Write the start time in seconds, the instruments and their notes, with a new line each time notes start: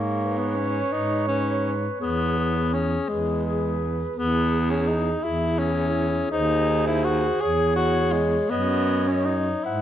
Already playing: baritone saxophone G#2, tenor saxophone A#3, alto saxophone C#5
0.19 clarinet B4
0.38 tenor saxophone B3
0.56 tenor saxophone C#4
0.92 baritone saxophone G#2, tenor saxophone D#4
1.28 tenor saxophone C#4, clarinet B4
2.00 baritone saxophone E2, tenor saxophone B3, clarinet G#4
2.38 clarinet G#4
2.74 tenor saxophone C#4
3.09 baritone saxophone E2, tenor saxophone G#3, alto saxophone B4
3.46 clarinet G#4
4.16 baritone saxophone E2, tenor saxophone B3, alto saxophone G#4
4.53 clarinet G#4
4.70 tenor saxophone C#4
4.88 tenor saxophone D#4
5.24 baritone saxophone E2, tenor saxophone E4, alto saxophone E4
5.59 tenor saxophone C#4, clarinet G#4
6.31 baritone saxophone D#2, tenor saxophone D#4, alto saxophone G#4, clarinet C5
6.70 clarinet C5
6.87 tenor saxophone E4
7.04 tenor saxophone F#4
7.41 baritone saxophone E2, tenor saxophone G#4, clarinet C#5
7.76 tenor saxophone F#4, clarinet C#5
8.12 tenor saxophone G#3
8.50 baritone saxophone F#2, tenor saxophone B3, clarinet C#5, alto saxophone D#5
8.89 clarinet C#5
9.08 tenor saxophone C#4
9.25 tenor saxophone D#4
9.64 baritone saxophone G#2, tenor saxophone E4, alto saxophone C5, clarinet F#5